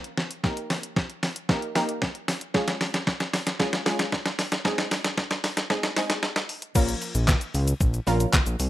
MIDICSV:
0, 0, Header, 1, 4, 480
1, 0, Start_track
1, 0, Tempo, 526316
1, 400, Time_signature, 4, 2, 24, 8
1, 7930, End_track
2, 0, Start_track
2, 0, Title_t, "Synth pluck"
2, 0, Program_c, 0, 84
2, 0, Note_on_c, 0, 58, 82
2, 0, Note_on_c, 0, 61, 73
2, 0, Note_on_c, 0, 65, 72
2, 0, Note_on_c, 0, 70, 83
2, 165, Note_off_c, 0, 58, 0
2, 166, Note_off_c, 0, 61, 0
2, 166, Note_off_c, 0, 65, 0
2, 167, Note_off_c, 0, 70, 0
2, 397, Note_on_c, 0, 58, 84
2, 398, Note_on_c, 0, 63, 80
2, 400, Note_on_c, 0, 67, 81
2, 402, Note_on_c, 0, 70, 94
2, 1047, Note_off_c, 0, 58, 0
2, 1047, Note_off_c, 0, 63, 0
2, 1048, Note_off_c, 0, 67, 0
2, 1049, Note_off_c, 0, 70, 0
2, 1358, Note_on_c, 0, 58, 86
2, 1360, Note_on_c, 0, 63, 78
2, 1361, Note_on_c, 0, 67, 82
2, 1363, Note_on_c, 0, 70, 94
2, 1521, Note_off_c, 0, 58, 0
2, 1522, Note_off_c, 0, 63, 0
2, 1523, Note_off_c, 0, 67, 0
2, 1523, Note_off_c, 0, 70, 0
2, 1598, Note_on_c, 0, 58, 80
2, 1600, Note_on_c, 0, 63, 73
2, 1601, Note_on_c, 0, 67, 73
2, 1602, Note_on_c, 0, 70, 88
2, 2085, Note_off_c, 0, 58, 0
2, 2086, Note_off_c, 0, 63, 0
2, 2087, Note_off_c, 0, 67, 0
2, 2087, Note_off_c, 0, 70, 0
2, 2317, Note_on_c, 0, 56, 87
2, 2319, Note_on_c, 0, 61, 80
2, 2320, Note_on_c, 0, 65, 80
2, 2322, Note_on_c, 0, 68, 95
2, 2967, Note_off_c, 0, 56, 0
2, 2968, Note_off_c, 0, 61, 0
2, 2968, Note_off_c, 0, 65, 0
2, 2969, Note_off_c, 0, 68, 0
2, 3277, Note_on_c, 0, 56, 89
2, 3279, Note_on_c, 0, 61, 78
2, 3281, Note_on_c, 0, 65, 84
2, 3282, Note_on_c, 0, 68, 97
2, 3441, Note_off_c, 0, 56, 0
2, 3442, Note_off_c, 0, 61, 0
2, 3443, Note_off_c, 0, 65, 0
2, 3443, Note_off_c, 0, 68, 0
2, 3517, Note_on_c, 0, 56, 81
2, 3518, Note_on_c, 0, 61, 73
2, 3520, Note_on_c, 0, 65, 74
2, 3522, Note_on_c, 0, 68, 88
2, 4005, Note_off_c, 0, 56, 0
2, 4005, Note_off_c, 0, 61, 0
2, 4006, Note_off_c, 0, 65, 0
2, 4007, Note_off_c, 0, 68, 0
2, 4237, Note_on_c, 0, 56, 86
2, 4239, Note_on_c, 0, 60, 81
2, 4241, Note_on_c, 0, 63, 79
2, 4242, Note_on_c, 0, 68, 95
2, 4887, Note_off_c, 0, 56, 0
2, 4888, Note_off_c, 0, 60, 0
2, 4889, Note_off_c, 0, 63, 0
2, 4889, Note_off_c, 0, 68, 0
2, 5198, Note_on_c, 0, 56, 92
2, 5200, Note_on_c, 0, 60, 78
2, 5201, Note_on_c, 0, 63, 82
2, 5202, Note_on_c, 0, 68, 96
2, 5361, Note_off_c, 0, 56, 0
2, 5362, Note_off_c, 0, 60, 0
2, 5363, Note_off_c, 0, 63, 0
2, 5363, Note_off_c, 0, 68, 0
2, 5438, Note_on_c, 0, 56, 78
2, 5439, Note_on_c, 0, 60, 72
2, 5441, Note_on_c, 0, 63, 74
2, 5442, Note_on_c, 0, 68, 90
2, 5925, Note_off_c, 0, 56, 0
2, 5926, Note_off_c, 0, 60, 0
2, 5927, Note_off_c, 0, 63, 0
2, 5927, Note_off_c, 0, 68, 0
2, 6157, Note_on_c, 0, 53, 91
2, 6158, Note_on_c, 0, 58, 84
2, 6159, Note_on_c, 0, 61, 80
2, 6160, Note_on_c, 0, 65, 83
2, 6162, Note_on_c, 0, 70, 95
2, 6807, Note_off_c, 0, 53, 0
2, 6807, Note_off_c, 0, 58, 0
2, 6808, Note_off_c, 0, 61, 0
2, 6808, Note_off_c, 0, 65, 0
2, 6809, Note_off_c, 0, 70, 0
2, 7357, Note_on_c, 0, 53, 88
2, 7359, Note_on_c, 0, 58, 80
2, 7360, Note_on_c, 0, 61, 81
2, 7362, Note_on_c, 0, 65, 82
2, 7362, Note_on_c, 0, 70, 98
2, 7845, Note_off_c, 0, 53, 0
2, 7846, Note_off_c, 0, 58, 0
2, 7846, Note_off_c, 0, 61, 0
2, 7847, Note_off_c, 0, 65, 0
2, 7847, Note_off_c, 0, 70, 0
2, 7930, End_track
3, 0, Start_track
3, 0, Title_t, "Analog synth bass"
3, 0, Program_c, 1, 38
3, 6160, Note_on_c, 1, 34, 107
3, 6336, Note_off_c, 1, 34, 0
3, 6520, Note_on_c, 1, 34, 104
3, 6696, Note_off_c, 1, 34, 0
3, 6880, Note_on_c, 1, 37, 96
3, 7056, Note_off_c, 1, 37, 0
3, 7119, Note_on_c, 1, 34, 108
3, 7296, Note_off_c, 1, 34, 0
3, 7360, Note_on_c, 1, 34, 99
3, 7536, Note_off_c, 1, 34, 0
3, 7720, Note_on_c, 1, 34, 93
3, 7808, Note_off_c, 1, 34, 0
3, 7840, Note_on_c, 1, 36, 90
3, 7928, Note_off_c, 1, 36, 0
3, 7930, End_track
4, 0, Start_track
4, 0, Title_t, "Drums"
4, 39, Note_on_c, 9, 42, 55
4, 130, Note_off_c, 9, 42, 0
4, 159, Note_on_c, 9, 38, 95
4, 251, Note_off_c, 9, 38, 0
4, 279, Note_on_c, 9, 42, 65
4, 370, Note_off_c, 9, 42, 0
4, 400, Note_on_c, 9, 36, 117
4, 400, Note_on_c, 9, 38, 86
4, 491, Note_off_c, 9, 36, 0
4, 491, Note_off_c, 9, 38, 0
4, 519, Note_on_c, 9, 42, 54
4, 611, Note_off_c, 9, 42, 0
4, 639, Note_on_c, 9, 46, 67
4, 640, Note_on_c, 9, 38, 92
4, 730, Note_off_c, 9, 46, 0
4, 731, Note_off_c, 9, 38, 0
4, 760, Note_on_c, 9, 42, 76
4, 851, Note_off_c, 9, 42, 0
4, 879, Note_on_c, 9, 36, 109
4, 880, Note_on_c, 9, 38, 86
4, 970, Note_off_c, 9, 36, 0
4, 971, Note_off_c, 9, 38, 0
4, 999, Note_on_c, 9, 42, 46
4, 1090, Note_off_c, 9, 42, 0
4, 1120, Note_on_c, 9, 38, 94
4, 1121, Note_on_c, 9, 46, 71
4, 1212, Note_off_c, 9, 38, 0
4, 1212, Note_off_c, 9, 46, 0
4, 1240, Note_on_c, 9, 42, 80
4, 1331, Note_off_c, 9, 42, 0
4, 1359, Note_on_c, 9, 36, 121
4, 1360, Note_on_c, 9, 38, 96
4, 1450, Note_off_c, 9, 36, 0
4, 1451, Note_off_c, 9, 38, 0
4, 1480, Note_on_c, 9, 42, 46
4, 1572, Note_off_c, 9, 42, 0
4, 1600, Note_on_c, 9, 38, 96
4, 1602, Note_on_c, 9, 46, 63
4, 1691, Note_off_c, 9, 38, 0
4, 1693, Note_off_c, 9, 46, 0
4, 1721, Note_on_c, 9, 42, 63
4, 1813, Note_off_c, 9, 42, 0
4, 1840, Note_on_c, 9, 38, 98
4, 1841, Note_on_c, 9, 36, 112
4, 1931, Note_off_c, 9, 38, 0
4, 1932, Note_off_c, 9, 36, 0
4, 1960, Note_on_c, 9, 42, 51
4, 2051, Note_off_c, 9, 42, 0
4, 2081, Note_on_c, 9, 38, 100
4, 2082, Note_on_c, 9, 46, 91
4, 2172, Note_off_c, 9, 38, 0
4, 2173, Note_off_c, 9, 46, 0
4, 2200, Note_on_c, 9, 42, 68
4, 2291, Note_off_c, 9, 42, 0
4, 2320, Note_on_c, 9, 36, 112
4, 2321, Note_on_c, 9, 38, 97
4, 2412, Note_off_c, 9, 36, 0
4, 2412, Note_off_c, 9, 38, 0
4, 2440, Note_on_c, 9, 42, 53
4, 2441, Note_on_c, 9, 38, 97
4, 2532, Note_off_c, 9, 38, 0
4, 2532, Note_off_c, 9, 42, 0
4, 2560, Note_on_c, 9, 46, 65
4, 2561, Note_on_c, 9, 38, 102
4, 2651, Note_off_c, 9, 46, 0
4, 2652, Note_off_c, 9, 38, 0
4, 2681, Note_on_c, 9, 38, 103
4, 2681, Note_on_c, 9, 42, 72
4, 2772, Note_off_c, 9, 42, 0
4, 2773, Note_off_c, 9, 38, 0
4, 2800, Note_on_c, 9, 36, 106
4, 2801, Note_on_c, 9, 38, 99
4, 2891, Note_off_c, 9, 36, 0
4, 2893, Note_off_c, 9, 38, 0
4, 2920, Note_on_c, 9, 42, 45
4, 2921, Note_on_c, 9, 38, 99
4, 3011, Note_off_c, 9, 42, 0
4, 3013, Note_off_c, 9, 38, 0
4, 3042, Note_on_c, 9, 38, 104
4, 3042, Note_on_c, 9, 46, 72
4, 3133, Note_off_c, 9, 38, 0
4, 3134, Note_off_c, 9, 46, 0
4, 3162, Note_on_c, 9, 38, 107
4, 3162, Note_on_c, 9, 42, 78
4, 3253, Note_off_c, 9, 38, 0
4, 3253, Note_off_c, 9, 42, 0
4, 3279, Note_on_c, 9, 36, 120
4, 3281, Note_on_c, 9, 38, 111
4, 3370, Note_off_c, 9, 36, 0
4, 3372, Note_off_c, 9, 38, 0
4, 3401, Note_on_c, 9, 38, 107
4, 3401, Note_on_c, 9, 42, 46
4, 3492, Note_off_c, 9, 42, 0
4, 3493, Note_off_c, 9, 38, 0
4, 3521, Note_on_c, 9, 38, 105
4, 3523, Note_on_c, 9, 46, 63
4, 3612, Note_off_c, 9, 38, 0
4, 3614, Note_off_c, 9, 46, 0
4, 3641, Note_on_c, 9, 38, 108
4, 3642, Note_on_c, 9, 42, 65
4, 3732, Note_off_c, 9, 38, 0
4, 3733, Note_off_c, 9, 42, 0
4, 3761, Note_on_c, 9, 36, 110
4, 3761, Note_on_c, 9, 38, 101
4, 3852, Note_off_c, 9, 36, 0
4, 3852, Note_off_c, 9, 38, 0
4, 3881, Note_on_c, 9, 38, 104
4, 3881, Note_on_c, 9, 42, 54
4, 3972, Note_off_c, 9, 38, 0
4, 3972, Note_off_c, 9, 42, 0
4, 4001, Note_on_c, 9, 38, 111
4, 4002, Note_on_c, 9, 46, 87
4, 4093, Note_off_c, 9, 38, 0
4, 4093, Note_off_c, 9, 46, 0
4, 4121, Note_on_c, 9, 42, 71
4, 4122, Note_on_c, 9, 38, 113
4, 4212, Note_off_c, 9, 42, 0
4, 4213, Note_off_c, 9, 38, 0
4, 4240, Note_on_c, 9, 36, 118
4, 4241, Note_on_c, 9, 38, 109
4, 4331, Note_off_c, 9, 36, 0
4, 4332, Note_off_c, 9, 38, 0
4, 4360, Note_on_c, 9, 42, 54
4, 4361, Note_on_c, 9, 38, 109
4, 4451, Note_off_c, 9, 42, 0
4, 4452, Note_off_c, 9, 38, 0
4, 4480, Note_on_c, 9, 46, 70
4, 4481, Note_on_c, 9, 38, 108
4, 4571, Note_off_c, 9, 46, 0
4, 4572, Note_off_c, 9, 38, 0
4, 4601, Note_on_c, 9, 38, 108
4, 4601, Note_on_c, 9, 42, 73
4, 4692, Note_off_c, 9, 38, 0
4, 4692, Note_off_c, 9, 42, 0
4, 4719, Note_on_c, 9, 36, 108
4, 4720, Note_on_c, 9, 38, 107
4, 4810, Note_off_c, 9, 36, 0
4, 4811, Note_off_c, 9, 38, 0
4, 4839, Note_on_c, 9, 42, 46
4, 4840, Note_on_c, 9, 38, 106
4, 4930, Note_off_c, 9, 42, 0
4, 4932, Note_off_c, 9, 38, 0
4, 4960, Note_on_c, 9, 38, 110
4, 4961, Note_on_c, 9, 46, 75
4, 5051, Note_off_c, 9, 38, 0
4, 5052, Note_off_c, 9, 46, 0
4, 5080, Note_on_c, 9, 38, 117
4, 5080, Note_on_c, 9, 42, 82
4, 5171, Note_off_c, 9, 38, 0
4, 5171, Note_off_c, 9, 42, 0
4, 5198, Note_on_c, 9, 36, 127
4, 5199, Note_on_c, 9, 38, 113
4, 5290, Note_off_c, 9, 36, 0
4, 5291, Note_off_c, 9, 38, 0
4, 5320, Note_on_c, 9, 38, 116
4, 5320, Note_on_c, 9, 42, 47
4, 5411, Note_off_c, 9, 42, 0
4, 5412, Note_off_c, 9, 38, 0
4, 5440, Note_on_c, 9, 38, 115
4, 5442, Note_on_c, 9, 46, 65
4, 5531, Note_off_c, 9, 38, 0
4, 5533, Note_off_c, 9, 46, 0
4, 5560, Note_on_c, 9, 38, 114
4, 5561, Note_on_c, 9, 42, 64
4, 5651, Note_off_c, 9, 38, 0
4, 5652, Note_off_c, 9, 42, 0
4, 5679, Note_on_c, 9, 38, 110
4, 5770, Note_off_c, 9, 38, 0
4, 5799, Note_on_c, 9, 42, 57
4, 5800, Note_on_c, 9, 38, 117
4, 5891, Note_off_c, 9, 38, 0
4, 5891, Note_off_c, 9, 42, 0
4, 5920, Note_on_c, 9, 46, 87
4, 6011, Note_off_c, 9, 46, 0
4, 6038, Note_on_c, 9, 42, 70
4, 6130, Note_off_c, 9, 42, 0
4, 6159, Note_on_c, 9, 49, 102
4, 6159, Note_on_c, 9, 82, 78
4, 6160, Note_on_c, 9, 36, 123
4, 6251, Note_off_c, 9, 36, 0
4, 6251, Note_off_c, 9, 49, 0
4, 6251, Note_off_c, 9, 82, 0
4, 6279, Note_on_c, 9, 42, 56
4, 6279, Note_on_c, 9, 82, 56
4, 6370, Note_off_c, 9, 42, 0
4, 6370, Note_off_c, 9, 82, 0
4, 6399, Note_on_c, 9, 46, 67
4, 6399, Note_on_c, 9, 82, 50
4, 6490, Note_off_c, 9, 46, 0
4, 6490, Note_off_c, 9, 82, 0
4, 6520, Note_on_c, 9, 42, 76
4, 6520, Note_on_c, 9, 82, 77
4, 6611, Note_off_c, 9, 42, 0
4, 6611, Note_off_c, 9, 82, 0
4, 6638, Note_on_c, 9, 39, 119
4, 6639, Note_on_c, 9, 36, 112
4, 6641, Note_on_c, 9, 82, 71
4, 6646, Note_on_c, 9, 38, 98
4, 6730, Note_off_c, 9, 36, 0
4, 6730, Note_off_c, 9, 39, 0
4, 6732, Note_off_c, 9, 82, 0
4, 6738, Note_off_c, 9, 38, 0
4, 6759, Note_on_c, 9, 42, 48
4, 6759, Note_on_c, 9, 82, 48
4, 6850, Note_off_c, 9, 42, 0
4, 6850, Note_off_c, 9, 82, 0
4, 6881, Note_on_c, 9, 46, 73
4, 6881, Note_on_c, 9, 82, 54
4, 6972, Note_off_c, 9, 46, 0
4, 6972, Note_off_c, 9, 82, 0
4, 7000, Note_on_c, 9, 42, 81
4, 7000, Note_on_c, 9, 82, 81
4, 7091, Note_off_c, 9, 42, 0
4, 7091, Note_off_c, 9, 82, 0
4, 7119, Note_on_c, 9, 36, 122
4, 7121, Note_on_c, 9, 82, 73
4, 7210, Note_off_c, 9, 36, 0
4, 7212, Note_off_c, 9, 82, 0
4, 7241, Note_on_c, 9, 42, 48
4, 7241, Note_on_c, 9, 82, 47
4, 7332, Note_off_c, 9, 42, 0
4, 7332, Note_off_c, 9, 82, 0
4, 7362, Note_on_c, 9, 46, 68
4, 7362, Note_on_c, 9, 82, 47
4, 7453, Note_off_c, 9, 46, 0
4, 7453, Note_off_c, 9, 82, 0
4, 7481, Note_on_c, 9, 42, 68
4, 7481, Note_on_c, 9, 82, 66
4, 7572, Note_off_c, 9, 42, 0
4, 7572, Note_off_c, 9, 82, 0
4, 7597, Note_on_c, 9, 82, 64
4, 7600, Note_on_c, 9, 36, 113
4, 7600, Note_on_c, 9, 39, 114
4, 7608, Note_on_c, 9, 38, 88
4, 7688, Note_off_c, 9, 82, 0
4, 7691, Note_off_c, 9, 39, 0
4, 7692, Note_off_c, 9, 36, 0
4, 7699, Note_off_c, 9, 38, 0
4, 7720, Note_on_c, 9, 42, 54
4, 7720, Note_on_c, 9, 82, 53
4, 7811, Note_off_c, 9, 42, 0
4, 7811, Note_off_c, 9, 82, 0
4, 7840, Note_on_c, 9, 46, 90
4, 7840, Note_on_c, 9, 82, 65
4, 7930, Note_off_c, 9, 46, 0
4, 7930, Note_off_c, 9, 82, 0
4, 7930, End_track
0, 0, End_of_file